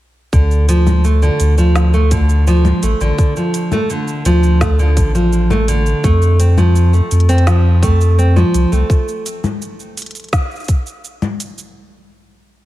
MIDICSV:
0, 0, Header, 1, 4, 480
1, 0, Start_track
1, 0, Key_signature, -1, "major"
1, 0, Tempo, 714286
1, 221, Time_signature, 4, 2, 24, 8
1, 8502, End_track
2, 0, Start_track
2, 0, Title_t, "Nylon-string guitar"
2, 0, Program_c, 0, 24
2, 221, Note_on_c, 0, 50, 59
2, 449, Note_off_c, 0, 50, 0
2, 461, Note_on_c, 0, 53, 88
2, 689, Note_off_c, 0, 53, 0
2, 701, Note_on_c, 0, 57, 71
2, 809, Note_off_c, 0, 57, 0
2, 822, Note_on_c, 0, 50, 68
2, 1050, Note_off_c, 0, 50, 0
2, 1061, Note_on_c, 0, 53, 69
2, 1289, Note_off_c, 0, 53, 0
2, 1302, Note_on_c, 0, 57, 96
2, 1409, Note_off_c, 0, 57, 0
2, 1422, Note_on_c, 0, 50, 64
2, 1649, Note_off_c, 0, 50, 0
2, 1662, Note_on_c, 0, 53, 98
2, 1890, Note_off_c, 0, 53, 0
2, 1902, Note_on_c, 0, 57, 70
2, 2009, Note_off_c, 0, 57, 0
2, 2023, Note_on_c, 0, 50, 76
2, 2250, Note_off_c, 0, 50, 0
2, 2263, Note_on_c, 0, 53, 62
2, 2490, Note_off_c, 0, 53, 0
2, 2502, Note_on_c, 0, 57, 87
2, 2609, Note_off_c, 0, 57, 0
2, 2621, Note_on_c, 0, 50, 70
2, 2849, Note_off_c, 0, 50, 0
2, 2861, Note_on_c, 0, 53, 92
2, 3089, Note_off_c, 0, 53, 0
2, 3100, Note_on_c, 0, 57, 72
2, 3209, Note_off_c, 0, 57, 0
2, 3220, Note_on_c, 0, 50, 75
2, 3449, Note_off_c, 0, 50, 0
2, 3459, Note_on_c, 0, 53, 72
2, 3688, Note_off_c, 0, 53, 0
2, 3700, Note_on_c, 0, 57, 96
2, 3808, Note_off_c, 0, 57, 0
2, 3819, Note_on_c, 0, 50, 76
2, 4048, Note_off_c, 0, 50, 0
2, 4059, Note_on_c, 0, 57, 85
2, 4288, Note_off_c, 0, 57, 0
2, 4298, Note_on_c, 0, 60, 71
2, 4407, Note_off_c, 0, 60, 0
2, 4420, Note_on_c, 0, 53, 73
2, 4648, Note_off_c, 0, 53, 0
2, 4659, Note_on_c, 0, 57, 67
2, 4888, Note_off_c, 0, 57, 0
2, 4898, Note_on_c, 0, 60, 94
2, 5008, Note_off_c, 0, 60, 0
2, 5019, Note_on_c, 0, 53, 75
2, 5248, Note_off_c, 0, 53, 0
2, 5259, Note_on_c, 0, 57, 97
2, 5488, Note_off_c, 0, 57, 0
2, 5500, Note_on_c, 0, 60, 82
2, 5609, Note_off_c, 0, 60, 0
2, 5619, Note_on_c, 0, 53, 75
2, 5848, Note_off_c, 0, 53, 0
2, 5860, Note_on_c, 0, 57, 82
2, 6088, Note_off_c, 0, 57, 0
2, 8502, End_track
3, 0, Start_track
3, 0, Title_t, "Sub bass"
3, 0, Program_c, 1, 38
3, 221, Note_on_c, 1, 38, 89
3, 872, Note_off_c, 1, 38, 0
3, 942, Note_on_c, 1, 38, 97
3, 1833, Note_off_c, 1, 38, 0
3, 1901, Note_on_c, 1, 33, 98
3, 1978, Note_off_c, 1, 33, 0
3, 2020, Note_on_c, 1, 33, 89
3, 2098, Note_off_c, 1, 33, 0
3, 2859, Note_on_c, 1, 38, 97
3, 3339, Note_on_c, 1, 33, 74
3, 3349, Note_off_c, 1, 38, 0
3, 3991, Note_off_c, 1, 33, 0
3, 4060, Note_on_c, 1, 41, 94
3, 4712, Note_off_c, 1, 41, 0
3, 4782, Note_on_c, 1, 41, 92
3, 5673, Note_off_c, 1, 41, 0
3, 5741, Note_on_c, 1, 36, 95
3, 5818, Note_off_c, 1, 36, 0
3, 5860, Note_on_c, 1, 36, 93
3, 5938, Note_off_c, 1, 36, 0
3, 8502, End_track
4, 0, Start_track
4, 0, Title_t, "Drums"
4, 221, Note_on_c, 9, 36, 107
4, 222, Note_on_c, 9, 82, 40
4, 288, Note_off_c, 9, 36, 0
4, 289, Note_off_c, 9, 82, 0
4, 343, Note_on_c, 9, 82, 19
4, 410, Note_off_c, 9, 82, 0
4, 462, Note_on_c, 9, 42, 82
4, 463, Note_on_c, 9, 82, 72
4, 529, Note_off_c, 9, 42, 0
4, 530, Note_off_c, 9, 82, 0
4, 582, Note_on_c, 9, 64, 54
4, 583, Note_on_c, 9, 82, 30
4, 650, Note_off_c, 9, 64, 0
4, 650, Note_off_c, 9, 82, 0
4, 702, Note_on_c, 9, 82, 37
4, 769, Note_off_c, 9, 82, 0
4, 821, Note_on_c, 9, 82, 21
4, 888, Note_off_c, 9, 82, 0
4, 939, Note_on_c, 9, 42, 84
4, 940, Note_on_c, 9, 82, 76
4, 1006, Note_off_c, 9, 42, 0
4, 1007, Note_off_c, 9, 82, 0
4, 1060, Note_on_c, 9, 82, 33
4, 1128, Note_off_c, 9, 82, 0
4, 1179, Note_on_c, 9, 38, 68
4, 1180, Note_on_c, 9, 82, 37
4, 1247, Note_off_c, 9, 38, 0
4, 1247, Note_off_c, 9, 82, 0
4, 1301, Note_on_c, 9, 82, 20
4, 1368, Note_off_c, 9, 82, 0
4, 1419, Note_on_c, 9, 42, 84
4, 1420, Note_on_c, 9, 36, 96
4, 1420, Note_on_c, 9, 82, 74
4, 1486, Note_off_c, 9, 42, 0
4, 1487, Note_off_c, 9, 82, 0
4, 1488, Note_off_c, 9, 36, 0
4, 1541, Note_on_c, 9, 82, 30
4, 1608, Note_off_c, 9, 82, 0
4, 1661, Note_on_c, 9, 82, 39
4, 1728, Note_off_c, 9, 82, 0
4, 1780, Note_on_c, 9, 64, 55
4, 1781, Note_on_c, 9, 82, 20
4, 1847, Note_off_c, 9, 64, 0
4, 1848, Note_off_c, 9, 82, 0
4, 1900, Note_on_c, 9, 42, 90
4, 1901, Note_on_c, 9, 82, 67
4, 1967, Note_off_c, 9, 42, 0
4, 1968, Note_off_c, 9, 82, 0
4, 2020, Note_on_c, 9, 82, 29
4, 2087, Note_off_c, 9, 82, 0
4, 2140, Note_on_c, 9, 36, 103
4, 2140, Note_on_c, 9, 82, 40
4, 2207, Note_off_c, 9, 36, 0
4, 2207, Note_off_c, 9, 82, 0
4, 2260, Note_on_c, 9, 82, 20
4, 2327, Note_off_c, 9, 82, 0
4, 2379, Note_on_c, 9, 42, 81
4, 2380, Note_on_c, 9, 82, 68
4, 2446, Note_off_c, 9, 42, 0
4, 2447, Note_off_c, 9, 82, 0
4, 2498, Note_on_c, 9, 64, 56
4, 2499, Note_on_c, 9, 82, 32
4, 2565, Note_off_c, 9, 64, 0
4, 2566, Note_off_c, 9, 82, 0
4, 2620, Note_on_c, 9, 82, 38
4, 2687, Note_off_c, 9, 82, 0
4, 2739, Note_on_c, 9, 82, 23
4, 2807, Note_off_c, 9, 82, 0
4, 2858, Note_on_c, 9, 42, 82
4, 2859, Note_on_c, 9, 82, 77
4, 2925, Note_off_c, 9, 42, 0
4, 2926, Note_off_c, 9, 82, 0
4, 2979, Note_on_c, 9, 82, 30
4, 3046, Note_off_c, 9, 82, 0
4, 3098, Note_on_c, 9, 38, 69
4, 3099, Note_on_c, 9, 36, 102
4, 3099, Note_on_c, 9, 82, 40
4, 3165, Note_off_c, 9, 38, 0
4, 3166, Note_off_c, 9, 36, 0
4, 3166, Note_off_c, 9, 82, 0
4, 3219, Note_on_c, 9, 82, 18
4, 3286, Note_off_c, 9, 82, 0
4, 3339, Note_on_c, 9, 36, 96
4, 3339, Note_on_c, 9, 42, 90
4, 3340, Note_on_c, 9, 82, 80
4, 3406, Note_off_c, 9, 36, 0
4, 3406, Note_off_c, 9, 42, 0
4, 3407, Note_off_c, 9, 82, 0
4, 3461, Note_on_c, 9, 82, 34
4, 3528, Note_off_c, 9, 82, 0
4, 3579, Note_on_c, 9, 82, 43
4, 3647, Note_off_c, 9, 82, 0
4, 3699, Note_on_c, 9, 64, 51
4, 3700, Note_on_c, 9, 82, 20
4, 3766, Note_off_c, 9, 64, 0
4, 3767, Note_off_c, 9, 82, 0
4, 3819, Note_on_c, 9, 42, 83
4, 3820, Note_on_c, 9, 82, 71
4, 3886, Note_off_c, 9, 42, 0
4, 3887, Note_off_c, 9, 82, 0
4, 3939, Note_on_c, 9, 82, 30
4, 4006, Note_off_c, 9, 82, 0
4, 4059, Note_on_c, 9, 36, 116
4, 4059, Note_on_c, 9, 82, 42
4, 4126, Note_off_c, 9, 36, 0
4, 4126, Note_off_c, 9, 82, 0
4, 4179, Note_on_c, 9, 82, 23
4, 4247, Note_off_c, 9, 82, 0
4, 4298, Note_on_c, 9, 42, 78
4, 4299, Note_on_c, 9, 82, 76
4, 4366, Note_off_c, 9, 42, 0
4, 4366, Note_off_c, 9, 82, 0
4, 4419, Note_on_c, 9, 64, 53
4, 4420, Note_on_c, 9, 82, 32
4, 4486, Note_off_c, 9, 64, 0
4, 4487, Note_off_c, 9, 82, 0
4, 4540, Note_on_c, 9, 82, 39
4, 4607, Note_off_c, 9, 82, 0
4, 4661, Note_on_c, 9, 82, 22
4, 4728, Note_off_c, 9, 82, 0
4, 4779, Note_on_c, 9, 42, 85
4, 4780, Note_on_c, 9, 82, 83
4, 4839, Note_off_c, 9, 42, 0
4, 4839, Note_on_c, 9, 42, 60
4, 4847, Note_off_c, 9, 82, 0
4, 4899, Note_off_c, 9, 42, 0
4, 4899, Note_on_c, 9, 42, 55
4, 4900, Note_on_c, 9, 82, 36
4, 4960, Note_off_c, 9, 42, 0
4, 4960, Note_on_c, 9, 42, 47
4, 4967, Note_off_c, 9, 82, 0
4, 5020, Note_on_c, 9, 38, 67
4, 5021, Note_on_c, 9, 82, 42
4, 5027, Note_off_c, 9, 42, 0
4, 5087, Note_off_c, 9, 38, 0
4, 5088, Note_off_c, 9, 82, 0
4, 5259, Note_on_c, 9, 36, 101
4, 5261, Note_on_c, 9, 42, 81
4, 5262, Note_on_c, 9, 82, 84
4, 5326, Note_off_c, 9, 36, 0
4, 5328, Note_off_c, 9, 42, 0
4, 5329, Note_off_c, 9, 82, 0
4, 5382, Note_on_c, 9, 82, 31
4, 5449, Note_off_c, 9, 82, 0
4, 5503, Note_on_c, 9, 82, 45
4, 5570, Note_off_c, 9, 82, 0
4, 5622, Note_on_c, 9, 64, 50
4, 5623, Note_on_c, 9, 82, 22
4, 5689, Note_off_c, 9, 64, 0
4, 5690, Note_off_c, 9, 82, 0
4, 5742, Note_on_c, 9, 42, 85
4, 5743, Note_on_c, 9, 82, 73
4, 5809, Note_off_c, 9, 42, 0
4, 5810, Note_off_c, 9, 82, 0
4, 5864, Note_on_c, 9, 82, 35
4, 5931, Note_off_c, 9, 82, 0
4, 5979, Note_on_c, 9, 36, 116
4, 5984, Note_on_c, 9, 82, 40
4, 6046, Note_off_c, 9, 36, 0
4, 6051, Note_off_c, 9, 82, 0
4, 6103, Note_on_c, 9, 82, 20
4, 6171, Note_off_c, 9, 82, 0
4, 6223, Note_on_c, 9, 42, 75
4, 6223, Note_on_c, 9, 82, 79
4, 6290, Note_off_c, 9, 42, 0
4, 6291, Note_off_c, 9, 82, 0
4, 6343, Note_on_c, 9, 64, 57
4, 6344, Note_on_c, 9, 82, 31
4, 6410, Note_off_c, 9, 64, 0
4, 6411, Note_off_c, 9, 82, 0
4, 6464, Note_on_c, 9, 82, 41
4, 6531, Note_off_c, 9, 82, 0
4, 6584, Note_on_c, 9, 82, 24
4, 6651, Note_off_c, 9, 82, 0
4, 6703, Note_on_c, 9, 42, 75
4, 6703, Note_on_c, 9, 82, 83
4, 6733, Note_off_c, 9, 42, 0
4, 6733, Note_on_c, 9, 42, 68
4, 6762, Note_off_c, 9, 42, 0
4, 6762, Note_on_c, 9, 42, 51
4, 6771, Note_off_c, 9, 82, 0
4, 6792, Note_off_c, 9, 42, 0
4, 6792, Note_on_c, 9, 42, 45
4, 6822, Note_off_c, 9, 42, 0
4, 6822, Note_on_c, 9, 42, 35
4, 6822, Note_on_c, 9, 82, 33
4, 6852, Note_off_c, 9, 42, 0
4, 6852, Note_on_c, 9, 42, 30
4, 6882, Note_off_c, 9, 42, 0
4, 6882, Note_on_c, 9, 42, 23
4, 6890, Note_off_c, 9, 82, 0
4, 6912, Note_off_c, 9, 42, 0
4, 6912, Note_on_c, 9, 42, 21
4, 6940, Note_on_c, 9, 36, 111
4, 6941, Note_on_c, 9, 38, 74
4, 6942, Note_on_c, 9, 82, 42
4, 6979, Note_off_c, 9, 42, 0
4, 7008, Note_off_c, 9, 36, 0
4, 7008, Note_off_c, 9, 38, 0
4, 7009, Note_off_c, 9, 82, 0
4, 7063, Note_on_c, 9, 82, 9
4, 7093, Note_off_c, 9, 82, 0
4, 7093, Note_on_c, 9, 82, 11
4, 7122, Note_off_c, 9, 82, 0
4, 7122, Note_on_c, 9, 82, 14
4, 7151, Note_off_c, 9, 82, 0
4, 7151, Note_on_c, 9, 82, 18
4, 7179, Note_on_c, 9, 42, 86
4, 7180, Note_off_c, 9, 82, 0
4, 7180, Note_on_c, 9, 36, 97
4, 7180, Note_on_c, 9, 82, 76
4, 7246, Note_off_c, 9, 42, 0
4, 7247, Note_off_c, 9, 82, 0
4, 7248, Note_off_c, 9, 36, 0
4, 7301, Note_on_c, 9, 82, 30
4, 7368, Note_off_c, 9, 82, 0
4, 7422, Note_on_c, 9, 82, 39
4, 7489, Note_off_c, 9, 82, 0
4, 7541, Note_on_c, 9, 64, 56
4, 7542, Note_on_c, 9, 82, 21
4, 7608, Note_off_c, 9, 64, 0
4, 7609, Note_off_c, 9, 82, 0
4, 7662, Note_on_c, 9, 42, 83
4, 7662, Note_on_c, 9, 82, 78
4, 7729, Note_off_c, 9, 42, 0
4, 7730, Note_off_c, 9, 82, 0
4, 7782, Note_on_c, 9, 82, 35
4, 7849, Note_off_c, 9, 82, 0
4, 8502, End_track
0, 0, End_of_file